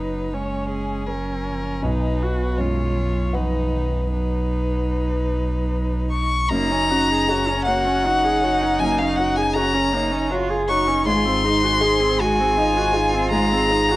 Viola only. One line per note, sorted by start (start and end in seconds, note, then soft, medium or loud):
0.00 0.35 D#4 soft
0.34 1.09 C#4 soft
1.09 1.86 C#4 soft
1.84 2.24 D#4 soft
2.23 2.62 F#4 soft
2.60 3.36 F4 soft
3.35 4.12 D#4 soft
4.13 6.27 D#4 soft
6.52 6.73 A#3 medium
6.71 6.92 C#4 medium
6.90 7.13 F#4 medium
7.11 7.31 G#4 medium
7.30 7.50 F#4 medium
7.49 7.69 C#4 medium
7.68 7.88 A#3 medium
7.86 8.07 C#4 medium
8.06 8.26 F#4 medium
8.24 8.45 G#4 medium
8.44 8.63 F#4 medium
8.62 8.80 C#4 medium
8.82 9.02 A#3 medium
9.01 9.21 C#4 medium
9.19 9.39 F#4 medium
9.38 9.57 G#4 medium
9.56 9.76 F#4 medium
9.74 9.95 C#4 medium
9.94 10.13 A#3 medium
10.12 10.33 C#4 medium
10.31 10.52 F#4 medium
10.50 10.71 G#4 medium
10.69 10.90 F#4 medium
10.88 11.07 C#4 medium
11.07 11.27 G#3 medium
11.26 11.46 C4 medium
11.45 11.65 D#4 medium
11.63 11.84 F#4 medium
11.82 12.02 D#4 medium
12.01 12.22 C4 medium
12.20 12.42 G#3 medium
12.40 12.60 C4 medium
12.59 12.79 D#4 medium
12.77 12.98 F#4 medium
12.96 13.16 D#4 medium
13.14 13.32 C4 medium
13.34 13.54 G#3 medium
13.53 13.73 C4 medium
13.72 13.92 D#4 medium
13.91 13.96 F#4 medium